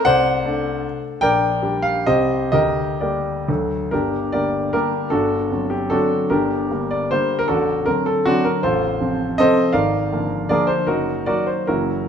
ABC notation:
X:1
M:3/4
L:1/16
Q:1/4=152
K:Gm
V:1 name="Grand piano"
[cd^f]8- [cdf]2 z2 | [Bdg]6 f2 [Gce]4 | [GBe]4 [GBd]4 z4 | [DGB]4 [GBd]4 [DGB]4 |
[D^FA]6 G2 [DFA]4 | [DGB]6 d2 c3 B | [D^FA]4 B2 A2 [CDF]2 B2 | [K:Bb] [FAc]8 [Ace]4 |
[Bdf]8 [_ABd]2 c2 | [E_GB]4 [GBd]2 c2 [_FGB]4 |]
V:2 name="Grand piano" clef=bass
C,,4 [A,D]8 | B,,,4 [G,DG]4 [C,,G,C]4 | D,,4 [G,B,]4 [D,,^F,A,A]4 | [G,,,G,,]4 [D,G,B,]4 [D,G,B,]4 |
[G,,,G,,]4 [D,^F,C]4 [D,F,C]4 | [G,,,G,,]4 [D,G,B,]4 [D,G,B,]4 | [A,,,,A,,,]4 [D,^F,C]4 [D,F,]4 | [K:Bb] [A,,,,A,,,]4 [C,F,C]4 [C,F,C]4 |
[_A,,,_A,,]4 [D,F,B,]4 [D,F,B,]4 | [_G,,,_G,,]4 [E,_G,B,]4 [G,,,G,,_F,B,]4 |]